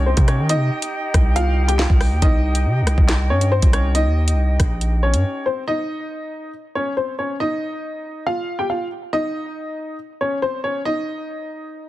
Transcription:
0.00 0.15 C2 loud
0.00 5.63 D#4 medium
0.00 5.63 G4 medium
0.00 2.19 D#5 medium
0.00 5.63 G5 medium
0.06 0.23 C4 medium
0.06 0.23 C5 medium
0.17 0.40 C3 loud
0.17 kick loud
0.17 closed hi-hat medium
0.28 0.45 C#4 medium
0.28 0.44 C#5 medium
0.28 cross-stick medium
0.28 closed hi-hat medium
0.39 0.56 D#3 loud
0.49 1.32 D#4 medium
0.49 1.32 D#5 loud
0.49 closed hi-hat medium
0.55 0.70 C3 loud
0.82 closed hi-hat medium
1.14 1.87 C2 loud
1.14 kick loud
1.14 cross-stick loud
1.14 closed hi-hat medium
1.36 1.67 F4 medium
1.36 1.66 F5 medium
1.36 closed hi-hat medium
1.68 1.77 G4 medium
1.68 1.76 G5 medium
1.68 closed hi-hat medium
1.79 1.96 F4 medium
1.79 1.95 F5 medium
1.79 snare loud
1.79 clap loud
1.90 2.13 C2 loud
1.90 kick loud
2.01 cross-stick medium
2.01 open hi-hat medium
2.11 2.22 D#2 loud
2.22 2.67 C2 loud
2.22 3.05 D#4 medium
2.22 5.64 D#5 medium
2.22 3.05 D#5 loud
2.22 kick loud
2.22 closed hi-hat medium
2.55 closed hi-hat medium
2.65 2.83 C3 loud
2.82 2.97 C2 loud
2.87 cross-stick loud
2.87 closed hi-hat medium
2.98 3.32 C2 loud
2.98 kick loud
3.08 snare loud
3.08 clap medium
3.08 closed hi-hat medium
3.30 3.61 G2 loud
3.30 3.47 C#4 medium
3.30 3.46 C#5 medium
3.41 closed hi-hat medium
3.52 3.68 C4 medium
3.52 3.68 C5 medium
3.62 4.07 C2 loud
3.62 kick medium
3.62 closed hi-hat medium
3.73 3.90 C#4 medium
3.73 3.89 C#5 medium
3.73 cross-stick loud
3.73 closed hi-hat medium
3.95 4.99 D#4 medium
3.95 4.99 D#5 loud
3.95 closed hi-hat medium
4.06 4.34 D#2 loud
4.28 closed hi-hat medium
4.33 4.58 C2 loud
4.60 5.15 A#1 loud
4.60 kick loud
4.60 cross-stick loud
4.60 closed hi-hat medium
4.81 closed hi-hat medium
5.03 5.44 C#4 medium
5.03 5.43 C#5 medium
5.14 5.24 G2 loud
5.14 closed hi-hat medium
5.46 5.63 C4 medium
5.46 5.62 C5 medium
5.68 6.50 D#4 medium
5.68 6.50 D#5 loud
6.75 6.92 C#4 medium
6.75 6.92 C#5 medium
6.97 7.14 C4 medium
6.97 7.13 C5 medium
7.19 7.35 C#4 medium
7.19 7.35 C#5 medium
7.40 8.23 D#4 medium
7.40 8.23 D#5 loud
8.27 8.57 F4 medium
8.27 8.57 F5 medium
8.59 8.67 G4 medium
8.59 8.67 G5 medium
8.70 8.86 F4 medium
8.70 8.86 F5 medium
9.13 9.96 D#4 medium
9.13 9.95 D#5 loud
10.21 10.38 C#4 medium
10.21 10.37 C#5 medium
10.42 10.59 C4 medium
10.42 10.59 C5 medium
10.64 10.81 C#4 medium
10.64 10.80 C#5 medium
10.85 11.89 D#4 medium
10.85 11.89 D#5 loud

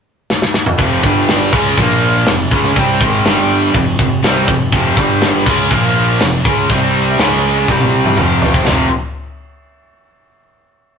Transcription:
0.30 snare medium
0.42 snare medium
0.54 snare medium
0.66 mid tom loud
0.78 1.01 F1 medium
0.78 1.02 F2 medium
0.78 1.03 C3 loud
0.78 1.03 F3 loud
0.78 kick loud
0.78 crash medium
1.03 1.49 G1 medium
1.03 1.52 G2 medium
1.03 1.52 D3 medium
1.03 1.52 G3 medium
1.03 kick loud
1.28 snare loud
1.28 crash medium
1.52 1.76 C#2 loud
1.52 1.76 C#3 medium
1.52 1.77 G#3 medium
1.52 1.77 C#4 medium
1.52 kick loud
1.52 crash loud
1.77 2.23 A#1 loud
1.77 2.26 A#2 medium
1.77 2.26 F3 loud
1.77 2.27 A#3 loud
1.77 kick loud
1.77 crash medium
2.26 2.50 F1 medium
2.26 2.46 F2 medium
2.26 2.47 C3 medium
2.26 snare loud
2.26 crash medium
2.51 2.74 C#2 medium
2.51 2.75 C#3 medium
2.51 2.75 G#3 loud
2.51 2.76 C#4 loud
2.51 kick loud
2.64 snare soft
2.76 2.99 C2 medium
2.76 3.00 C3 medium
2.76 3.00 G3 loud
2.76 3.01 C4 loud
2.76 kick loud
2.76 crash medium
3.01 3.24 G#1 loud
3.01 3.25 G#2 medium
3.01 3.25 D#3 loud
3.01 3.25 G#3 loud
3.01 kick loud
3.25 3.71 G1 medium
3.25 3.74 G2 medium
3.25 3.74 D3 medium
3.25 3.74 G3 loud
3.25 snare loud
3.25 crash medium
3.74 3.97 F1 medium
3.74 3.94 F2 medium
3.74 3.94 C3 medium
3.74 kick medium
3.74 crash medium
3.99 4.22 F1 medium
3.99 4.19 F2 medium
3.99 4.19 C3 medium
3.99 kick loud
4.23 4.46 C2 loud
4.23 4.47 C3 loud
4.23 4.48 G3 loud
4.23 4.48 C4 loud
4.23 snare loud
4.23 crash medium
4.48 4.71 F1 medium
4.48 4.68 F2 medium
4.48 4.68 C3 medium
4.48 kick loud
4.72 4.96 F1 medium
4.72 4.97 F2 medium
4.72 4.97 C3 loud
4.72 4.98 F3 loud
4.72 kick loud
4.72 crash medium
4.97 5.43 G1 medium
4.97 5.46 G2 medium
4.97 5.45 D3 medium
4.97 5.46 G3 loud
4.97 kick loud
5.21 snare loud
5.21 crash medium
5.46 5.69 C#2 medium
5.46 5.70 C#3 medium
5.46 5.71 G#3 medium
5.46 5.71 C#4 loud
5.46 kick loud
5.46 crash loud
5.70 6.17 A#1 loud
5.70 6.19 A#2 loud
5.70 6.20 F3 loud
5.70 6.20 A#3 loud
5.70 kick loud
5.70 crash medium
6.20 6.44 F1 medium
6.20 6.40 F2 medium
6.20 6.40 C3 medium
6.20 snare loud
6.20 crash medium
6.44 6.68 C#2 loud
6.44 6.69 C#3 medium
6.44 6.69 G#3 medium
6.44 6.69 C#4 loud
6.44 kick loud
6.70 7.15 C2 loud
6.70 7.18 C3 loud
6.70 7.19 G3 loud
6.70 7.19 C4 loud
6.70 kick loud
6.70 crash medium
7.19 7.65 C#2 medium
7.19 7.67 C#3 loud
7.19 7.68 G#3 loud
7.19 7.68 C#4 loud
7.19 snare loud
7.19 crash medium
7.68 8.14 C2 medium
7.68 8.17 C3 loud
7.68 8.17 G3 loud
7.68 8.17 C4 loud
7.68 kick medium
7.81 high tom medium
8.05 mid tom medium
8.17 8.63 F1 loud
8.17 8.66 F2 loud
8.17 8.66 C3 medium
8.17 8.66 F3 loud
8.17 mid tom medium
8.42 floor tom loud
8.54 kick medium
8.66 8.89 F1 medium
8.66 8.86 F2 medium
8.66 8.87 C3 loud
8.66 8.87 F3 loud
8.66 snare medium
8.66 floor tom loud
8.66 ride bell medium

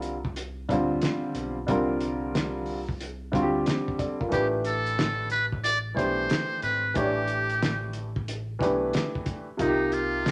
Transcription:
0.00 0.65 C2 loud
0.00 0.13 D3 medium
0.00 0.14 G3 medium
0.00 0.14 C4 medium
0.00 0.15 F4 medium
0.00 0.15 A#4 medium
0.00 closed hi-hat medium
0.25 kick medium
0.36 closed hi-hat medium
0.69 0.99 D2 medium
0.69 1.54 D3 medium
0.69 1.54 G3 medium
0.69 1.54 C4 medium
0.69 1.55 F4 medium
0.69 kick medium
0.69 closed hi-hat medium
0.73 1.56 C5 medium
1.02 snare loud
1.02 closed hi-hat medium
1.35 1.65 B1 medium
1.35 closed hi-hat medium
1.67 3.29 C2 medium
1.67 2.77 D3 medium
1.67 2.77 G3 medium
1.67 2.78 C4 medium
1.67 2.78 F4 medium
1.67 kick loud
1.67 closed hi-hat medium
1.71 2.79 A#4 medium
2.01 closed hi-hat medium
2.35 snare loud
2.35 closed hi-hat medium
2.66 open hi-hat soft
2.89 kick medium
3.01 closed hi-hat medium
3.32 3.63 D2 medium
3.32 4.17 D3 medium
3.32 4.17 G3 medium
3.32 4.18 C4 medium
3.32 3.67 F4 medium
3.32 3.43 F#4 medium
3.32 kick medium
3.32 closed hi-hat medium
3.42 3.65 G4 medium
3.66 3.98 G4 medium
3.66 3.97 C5 medium
3.66 snare loud
3.66 closed hi-hat medium
3.88 kick medium
3.99 4.20 A4 medium
3.99 4.19 D5 medium
3.99 kick medium
3.99 closed hi-hat medium
4.20 4.52 F4 soft
4.20 4.52 A#4 medium
4.20 kick medium
4.29 5.93 A1 medium
4.29 5.40 E3 medium
4.29 5.41 A3 medium
4.29 5.41 D4 medium
4.29 5.42 G4 medium
4.29 kick loud
4.29 closed hi-hat medium
4.33 4.48 G4 medium
4.33 5.42 B4 medium
4.64 5.27 A4 medium
4.64 closed hi-hat medium
4.86 closed hi-hat soft
4.99 snare loud
4.99 closed hi-hat medium
5.30 5.46 B4 medium
5.30 closed hi-hat medium
5.52 kick medium
5.64 5.79 D5 loud
5.64 closed hi-hat medium
5.94 6.27 B1 medium
5.94 6.80 E3 medium
5.94 6.81 A3 medium
5.94 6.81 D4 medium
5.94 6.82 G4 medium
5.94 6.59 C5 medium
5.94 6.82 C5 medium
5.94 kick medium
5.99 closed hi-hat medium
6.30 snare loud
6.30 closed hi-hat medium
6.62 6.93 G#1 medium
6.62 6.98 B4 medium
6.62 closed hi-hat medium
6.94 8.57 A1 medium
6.94 8.04 E3 medium
6.94 8.05 A3 medium
6.94 8.05 D4 medium
6.94 7.95 G4 medium
6.94 8.06 G4 medium
6.94 7.05 C#5 medium
6.94 kick loud
6.94 closed hi-hat medium
7.04 8.10 D5 medium
7.28 closed hi-hat medium
7.50 closed hi-hat soft
7.63 snare loud
7.63 closed hi-hat medium
7.93 closed hi-hat medium
8.16 kick medium
8.28 closed hi-hat medium
8.59 8.91 B1 medium
8.59 9.44 E3 medium
8.59 9.45 A3 medium
8.59 9.46 D4 medium
8.59 9.46 G4 medium
8.59 kick medium
8.59 closed hi-hat medium
8.63 9.46 B4 medium
8.93 snare loud
8.93 closed hi-hat medium
9.15 kick medium
9.26 kick medium
9.26 closed hi-hat medium
9.57 10.31 C2 loud
9.57 10.31 C3 medium
9.57 10.31 F3 medium
9.57 10.31 A#3 medium
9.57 9.95 D#4 medium
9.57 10.31 D#4 medium
9.57 kick loud
9.57 closed hi-hat medium
9.61 9.69 F4 medium
9.68 10.31 G4 medium
9.92 10.31 F4 medium
9.92 closed hi-hat medium
10.26 snare loud
10.26 closed hi-hat medium

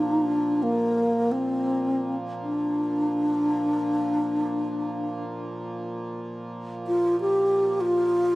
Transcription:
0.00 8.35 A#2 medium
0.00 8.35 F3 medium
0.00 0.64 D4 medium
0.63 1.33 A#3 medium
1.31 2.16 C4 medium
2.42 5.24 D4 medium
6.87 7.19 F4 medium
7.21 7.82 G4 loud
7.81 8.35 F4 loud

